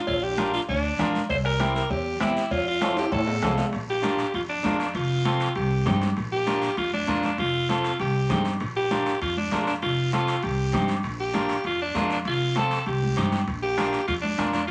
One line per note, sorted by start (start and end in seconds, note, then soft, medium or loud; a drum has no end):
0.07 0.56 A#1 medium
0.07 0.25 F4 medium
0.07 bombo low medium
0.07 cowbell loud
0.07 long guiro medium
0.23 0.53 G4 loud
0.38 0.60 D4 medium
0.38 0.60 F4 medium
0.38 0.60 A#4 medium
0.38 bombo rim medium
0.38 cowbell medium
0.38 high conga medium
0.38 short guiro medium
0.54 0.60 F4 medium
0.54 short guiro medium
0.68 0.93 D2 medium
0.68 1.11 D4 medium
0.68 bombo low medium
0.68 cowbell medium
0.68 high conga soft
0.68 long guiro medium
0.99 1.11 F2 loud
0.99 1.21 D4 medium
0.99 1.21 F4 medium
0.99 1.21 A#4 medium
0.99 bombo rim medium
0.99 cowbell medium
0.99 high conga medium
0.99 low conga medium
0.99 short guiro medium
1.15 high conga medium
1.15 short guiro medium
1.29 1.78 C2 medium
1.29 1.37 C5 loud
1.29 bombo low medium
1.29 cowbell loud
1.29 high conga soft
1.29 long guiro medium
1.45 1.74 A#4 loud
1.45 bombo rim medium
1.60 1.81 C4 medium
1.60 1.81 E4 medium
1.60 1.82 G4 medium
1.60 bombo rim medium
1.60 cowbell medium
1.60 high conga medium
1.60 short guiro medium
1.75 1.92 A#4 medium
1.75 short guiro medium
1.90 2.15 E2 medium
1.90 2.20 G4 medium
1.90 bombo low medium
1.90 cowbell medium
1.90 high conga soft
1.90 long guiro medium
2.20 2.33 E2 loud
2.20 2.42 C4 medium
2.20 2.53 E4 medium
2.20 2.42 E4 medium
2.20 2.42 G4 medium
2.20 bombo rim medium
2.20 cowbell medium
2.20 high conga medium
2.20 short guiro medium
2.37 short guiro medium
2.51 3.00 F2 medium
2.51 2.67 F4 loud
2.51 bombo low medium
2.51 cowbell loud
2.51 high conga soft
2.51 long guiro medium
2.68 2.96 F4 medium
2.81 3.03 C4 medium
2.81 3.03 F4 medium
2.81 3.03 A4 medium
2.81 bombo rim medium
2.81 cowbell medium
2.81 high conga medium
2.81 high timbale medium
2.81 short guiro medium
2.97 3.12 G4 medium
2.97 high timbale medium
2.97 short guiro medium
3.12 3.37 A2 loud
3.12 3.55 A4 medium
3.12 bombo low medium
3.12 cowbell medium
3.12 high conga soft
3.12 high timbale medium
3.12 long guiro medium
3.27 low timbale medium
3.43 3.55 C2 loud
3.43 3.64 C4 medium
3.43 3.64 F4 medium
3.43 3.64 A4 medium
3.43 bombo rim medium
3.43 cowbell medium
3.43 high conga medium
3.43 low conga medium
3.43 low timbale medium
3.43 short guiro medium
3.58 high conga medium
3.58 low timbale medium
3.58 short guiro medium
3.73 4.22 A#1 medium
3.73 high conga soft
3.73 high timbale medium
3.73 long guiro medium
3.90 4.32 G4 loud
4.03 4.24 D4 medium
4.03 4.25 F4 medium
4.03 4.25 A#4 medium
4.03 high conga medium
4.03 high timbale medium
4.03 short guiro medium
4.18 high timbale medium
4.18 short guiro medium
4.34 4.58 F2 medium
4.34 4.41 F4 medium
4.34 high conga soft
4.34 high timbale medium
4.34 long guiro medium
4.49 4.78 D4 medium
4.64 4.89 F2 medium
4.64 4.86 D4 medium
4.64 4.86 F4 medium
4.64 4.86 A#4 medium
4.64 high conga medium
4.64 high timbale medium
4.64 low timbale medium
4.64 short guiro medium
4.80 4.96 D4 medium
4.80 high timbale medium
4.80 short guiro medium
4.95 5.44 F1 medium
4.95 5.24 F4 loud
4.95 high conga soft
4.95 high timbale medium
4.95 long guiro medium
5.25 5.47 C4 medium
5.25 5.54 F4 medium
5.25 5.47 F4 soft
5.25 5.47 A4 medium
5.25 high conga medium
5.25 high timbale medium
5.25 short guiro medium
5.40 high timbale medium
5.40 short guiro medium
5.55 5.80 C2 medium
5.55 5.98 G4 medium
5.55 high conga soft
5.55 high timbale medium
5.55 long guiro medium
5.86 6.11 G2 medium
5.86 6.08 C4 medium
5.86 6.08 D#4 medium
5.86 6.08 G4 medium
5.86 high conga medium
5.86 low conga medium
5.86 high timbale medium
5.86 low timbale medium
5.86 short guiro medium
6.01 high conga medium
6.01 high timbale medium
6.01 short guiro medium
6.17 6.66 A#1 medium
6.17 high timbale medium
6.17 long guiro medium
6.32 6.75 G4 loud
6.46 6.68 D4 medium
6.46 6.69 F4 soft
6.46 6.69 A#4 medium
6.46 high conga medium
6.46 high timbale medium
6.46 short guiro medium
6.62 high timbale medium
6.62 short guiro medium
6.77 7.02 F2 medium
6.77 6.92 F4 medium
6.77 high conga soft
6.77 high timbale medium
6.77 long guiro medium
6.93 7.22 D4 medium
6.93 high conga medium
7.07 7.33 F2 medium
7.07 7.29 D4 medium
7.07 7.29 F4 medium
7.07 7.30 A#4 medium
7.07 high conga medium
7.07 high timbale medium
7.07 short guiro medium
7.23 7.38 D4 medium
7.23 high conga medium
7.23 high timbale medium
7.23 short guiro medium
7.38 7.87 F1 medium
7.38 7.67 F4 loud
7.38 high conga soft
7.38 high timbale medium
7.38 long guiro medium
7.69 7.91 C4 medium
7.69 7.91 F4 medium
7.69 7.98 F4 medium
7.69 7.91 A4 medium
7.69 high conga medium
7.69 high timbale medium
7.69 short guiro medium
7.84 high timbale medium
7.84 short guiro medium
8.00 8.24 C2 medium
8.00 8.43 G4 medium
8.00 high conga soft
8.00 high timbale medium
8.00 long guiro medium
8.29 8.54 G2 medium
8.29 8.51 C4 medium
8.29 8.51 D#4 medium
8.29 8.52 G4 medium
8.29 high conga medium
8.29 low conga medium
8.29 high timbale medium
8.29 low timbale medium
8.29 short guiro medium
8.45 high timbale medium
8.45 short guiro medium
8.60 9.09 A#1 medium
8.60 high conga soft
8.60 high timbale medium
8.60 long guiro medium
8.76 9.18 G4 loud
8.91 9.12 D4 medium
8.91 9.13 F4 medium
8.91 9.13 A#4 medium
8.91 high conga medium
8.91 high timbale medium
8.91 short guiro medium
9.06 high timbale medium
9.06 short guiro medium
9.22 9.46 F2 medium
9.22 9.36 F4 loud
9.22 high conga soft
9.22 high timbale medium
9.22 long guiro medium
9.37 9.65 D4 medium
9.37 high conga medium
9.52 9.76 F2 medium
9.52 9.73 D4 medium
9.52 9.73 F4 soft
9.52 9.74 A#4 medium
9.52 high conga medium
9.52 high timbale medium
9.52 low timbale medium
9.52 short guiro medium
9.67 9.74 D4 medium
9.67 high timbale medium
9.67 short guiro medium
9.82 10.31 F1 medium
9.82 10.11 F4 medium
9.82 high conga soft
9.82 high timbale medium
9.82 long guiro medium
10.12 10.34 C4 medium
10.12 10.34 F4 medium
10.12 10.45 F4 medium
10.12 10.34 A4 medium
10.12 high conga medium
10.12 high timbale medium
10.12 short guiro medium
10.28 high timbale medium
10.28 short guiro medium
10.43 10.68 C2 medium
10.43 10.89 G4 medium
10.43 high conga soft
10.43 high timbale medium
10.43 long guiro medium
10.73 10.98 G2 medium
10.73 10.95 C4 medium
10.73 10.95 D#4 medium
10.73 10.95 G4 medium
10.73 high conga medium
10.73 low conga medium
10.73 high timbale medium
10.73 short guiro medium
10.88 high timbale medium
10.88 short guiro medium
11.03 11.53 A#1 medium
11.03 high conga soft
11.03 high timbale medium
11.03 long guiro medium
11.20 11.62 G4 medium
11.34 11.55 D4 medium
11.34 11.56 F4 medium
11.34 11.56 A#4 medium
11.34 high conga medium
11.34 high timbale medium
11.34 short guiro medium
11.49 high timbale medium
11.49 short guiro medium
11.64 11.89 F2 medium
11.64 11.80 F4 medium
11.64 high conga soft
11.64 high timbale medium
11.64 long guiro medium
11.82 12.09 D4 medium
11.95 12.19 F2 medium
11.95 12.17 D4 medium
11.95 12.17 F4 medium
11.95 12.17 A#4 medium
11.95 high conga medium
11.95 high timbale medium
11.95 low timbale medium
11.95 short guiro medium
12.10 12.19 D4 medium
12.10 high timbale medium
12.10 short guiro medium
12.25 12.74 F1 medium
12.25 12.55 F4 loud
12.25 high conga soft
12.25 high timbale medium
12.25 long guiro medium
12.56 12.77 C4 medium
12.56 12.77 F4 soft
12.56 12.78 A4 medium
12.56 12.86 A4 loud
12.56 high conga loud
12.56 high timbale medium
12.56 short guiro medium
12.71 high timbale medium
12.71 short guiro medium
12.86 13.11 C2 medium
12.86 13.29 G4 medium
12.86 high conga soft
12.86 high timbale medium
12.86 long guiro medium
13.02 high conga medium
13.17 13.41 G2 medium
13.17 13.38 C4 medium
13.17 13.38 D#4 medium
13.17 13.39 G4 medium
13.17 high conga medium
13.17 low conga medium
13.17 high timbale medium
13.17 short guiro medium
13.32 high conga medium
13.32 high timbale medium
13.32 short guiro medium
13.47 13.96 A#1 medium
13.47 bombo low medium
13.47 high conga soft
13.47 high timbale medium
13.47 long guiro medium
13.63 14.05 G4 loud
13.78 13.99 D4 medium
13.78 13.99 F4 medium
13.78 13.99 A#4 medium
13.78 bombo rim medium
13.78 high conga medium
13.78 high timbale medium
13.78 short guiro medium
13.93 high timbale medium
13.93 short guiro medium
14.08 14.32 F2 medium
14.08 14.15 F4 loud
14.08 bombo low medium
14.08 high conga soft
14.08 high timbale medium
14.08 long guiro medium
14.22 14.51 D4 medium
14.22 high conga medium
14.38 14.63 F2 medium
14.38 14.60 D4 medium
14.38 14.60 F4 medium
14.38 14.60 A#4 medium
14.38 bombo rim medium
14.38 high conga medium
14.38 high timbale medium
14.38 short guiro medium
14.53 14.67 D4 medium
14.53 high conga medium
14.53 high timbale medium
14.53 short guiro medium
14.67 14.71 F4 loud